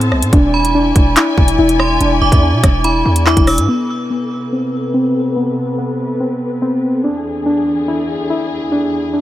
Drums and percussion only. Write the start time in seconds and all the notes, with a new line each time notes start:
0.01 closed hi-hat
0.12 cross-stick
0.22 closed hi-hat
0.33 kick, closed hi-hat
0.65 closed hi-hat
0.96 kick, closed hi-hat
1.16 clap, closed hi-hat
1.38 kick
1.48 closed hi-hat
1.69 closed hi-hat
1.80 cross-stick
2.01 closed hi-hat
2.32 kick, closed hi-hat
2.64 kick, cross-stick, closed hi-hat
2.84 closed hi-hat
3.16 closed hi-hat
3.26 clap
3.37 kick, closed hi-hat
3.47 cross-stick, open hi-hat
3.58 closed hi-hat